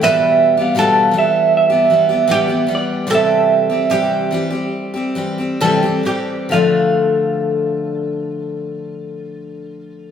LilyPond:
<<
  \new Staff \with { instrumentName = "Clean electric guitar" } { \time 4/4 \key d \dorian \tempo 4 = 71 e''8. f''8. e''8 e''4. d''8 | e''2. r4 | f''1 | }
  \new Staff \with { instrumentName = "Oud" } { \time 4/4 \key d \dorian b'4 a'2 g'4 | a'4 g'2 a'8 g'8 | f'1 | }
  \new Staff \with { instrumentName = "Steel-string acoustic guitar" } { \time 4/4 \key d \dorian <b, e g b g'>8. <g b g'>16 <b, e g b g'>8 <e g b g'>8. <g b g'>16 <e g b g'>16 <g b g'>16 <b, e g b g'>16 <g b g'>16 <e g b g'>8 | <c e g c' g'>8. <g c' g'>16 <c e g c' g'>8 <e g c' g'>16 <g c' g'>8 <g c' g'>16 <e g c' g'>16 <g c' g'>16 <c e g c' g'>16 <g c' g'>16 <e g c' g'>8 | <d f a d'>1 | }
>>